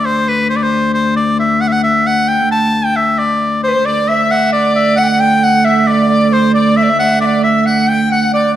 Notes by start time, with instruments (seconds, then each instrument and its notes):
Already playing: viola da gamba D2
0.05 shawm C5
0.28 shawm B4
0.50 shawm C5
0.57 shawm D5
0.63 shawm C5
0.94 shawm C5
1.16 shawm D5
1.40 shawm E5
1.61 shawm F#5
1.68 shawm E5
1.72 shawm F#5
1.84 shawm E5
2.07 shawm F#5
2.28 shawm G5
2.52 shawm A5
2.85 shawm G5
2.96 shawm E5
3.19 shawm D5
3.64 recorder C5, shawm C5
3.68 recorder B4
3.74 recorder C5
3.84 viola da gamba D2, recorder D5, shawm D5
4.09 recorder E5, shawm E5
4.31 shawm F#5
4.53 shawm D5, recorder D5
4.76 shawm E5
4.96 shawm F#5, recorder F#5
5.03 recorder G5
5.08 recorder F#5
5.20 recorder G5, shawm G5
5.42 recorder F#5, shawm F#5
5.64 recorder E5, shawm E5
5.87 shawm D5, recorder D5 E5
6.09 recorder D5
6.32 recorder C5, shawm C5
6.54 recorder D5, shawm D5
6.77 recorder E5, shawm E5
6.83 recorder D5
6.90 recorder E5
6.99 shawm F#5
7.21 shawm D5, recorder E5
7.26 recorder D5
7.44 recorder E5, shawm E5
7.66 recorder F#5, shawm F#5
7.89 shawm G5, recorder G5
8.12 recorder F#5, shawm F#5
8.33 recorder D5, shawm D5